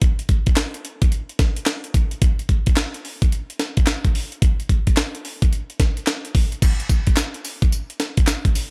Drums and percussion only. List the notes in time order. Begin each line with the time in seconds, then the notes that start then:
0.02 kick, closed hi-hat
0.19 closed hi-hat
0.29 kick, closed hi-hat
0.46 kick, closed hi-hat
0.56 snare, clap, closed hi-hat
0.74 closed hi-hat
0.85 closed hi-hat
1.02 kick, closed hi-hat
1.12 closed hi-hat
1.29 closed hi-hat
1.39 kick, snare, closed hi-hat
1.56 closed hi-hat
1.66 snare, clap, closed hi-hat
1.84 closed hi-hat
1.94 kick, closed hi-hat
2.11 closed hi-hat
2.22 kick, closed hi-hat
2.39 closed hi-hat
2.49 kick, closed hi-hat
2.66 kick, closed hi-hat
2.76 snare, clap, closed hi-hat
2.94 closed hi-hat
3.05 open hi-hat
3.22 kick, closed hi-hat
3.32 closed hi-hat
3.50 closed hi-hat
3.59 snare, closed hi-hat
3.77 kick, closed hi-hat
3.86 snare, clap, closed hi-hat
4.04 kick, closed hi-hat
4.15 open hi-hat
4.32 closed hi-hat
4.42 kick, closed hi-hat
4.60 closed hi-hat
4.69 kick, closed hi-hat
4.87 kick, closed hi-hat
4.97 snare, clap, closed hi-hat
5.15 closed hi-hat
5.25 open hi-hat
5.42 kick, closed hi-hat
5.53 closed hi-hat
5.70 closed hi-hat
5.80 kick, snare, closed hi-hat
5.97 closed hi-hat
6.07 snare, clap, closed hi-hat
6.25 closed hi-hat
6.35 kick, open hi-hat
6.52 closed hi-hat
6.62 kick, closed hi-hat, crash, tambourine
6.80 closed hi-hat
6.89 kick, closed hi-hat, tambourine
7.07 kick, closed hi-hat
7.16 snare, clap, closed hi-hat, tambourine
7.34 closed hi-hat
7.45 open hi-hat, tambourine
7.62 kick, closed hi-hat
7.72 closed hi-hat, tambourine
7.90 closed hi-hat
8.00 snare, closed hi-hat
8.17 kick, closed hi-hat
8.27 snare, clap, closed hi-hat, tambourine
8.45 kick, closed hi-hat
8.55 open hi-hat, tambourine